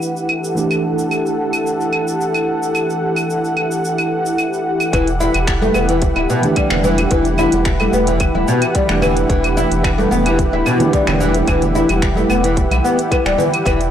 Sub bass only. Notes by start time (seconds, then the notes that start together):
4.93 E1
5.34 E1
5.75 E1
6.16 D1
6.71 E1
7.11 E1
7.53 E1
7.93 E1
8.35 D1
8.89 E1
9.30 E1
9.71 E1
10.12 E1
10.53 D1
11.07 E1
11.48 E1
11.89 E1
12.30 E1
12.71 B1
13.25 D1
13.66 E1